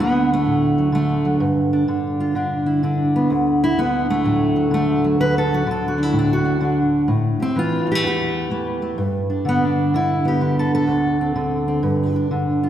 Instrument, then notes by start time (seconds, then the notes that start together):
steel-string acoustic guitar
Already playing: D2 F#3
0.00 D3 B3
0.33 A3
0.46 A2
0.78 F#3
0.92 D3 A3
1.25 F#3
1.40 G2
1.73 D4
1.88 D3
2.20 F4
2.35 D3 D4
2.66 E4
2.83 D3 D4
3.16 B3
3.30 D2
3.64 E4
3.78 D3 B3
4.10 A3
4.24 A2 F#3
4.56 F#3
4.71 D3 A3
5.04 F#3
5.20 D2 B4
5.38 A4
5.53 F#3 F#4
5.67 D3
5.71 A4
5.88 F#4
5.98 D4
6.03 E4
6.13 A2
6.19 D4
6.33 F#4
6.45 D4
6.60 D3 D4
7.08 A2
7.40 C4 G4
7.56 E3 F4
7.87 F#3
7.92 A3 G4
8.03 E2
8.07 G4
8.50 E3 A3
8.82 A3
8.98 G2
9.30 D4
9.45 D3 B3
9.65 D4
9.94 D3 E4
10.25 B3 G4
10.41 D3 D4
10.59 A4
10.75 A4
10.87 D2
11.21 C4
11.36 D3
11.68 C4
11.83 G2
12.16 D4
12.31 D3
12.63 F4